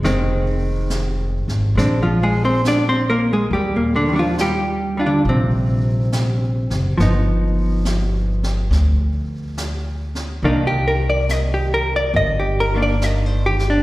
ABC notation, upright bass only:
X:1
M:4/4
L:1/8
Q:"Swing" 1/4=70
K:Cm
V:1 name="Upright bass" clef=bass
F,,,3 A,,, B,,,4 | E,,4 B,,,3 ^F,,, | G,,,4 D,,4 | C,,4 G,,,4 |]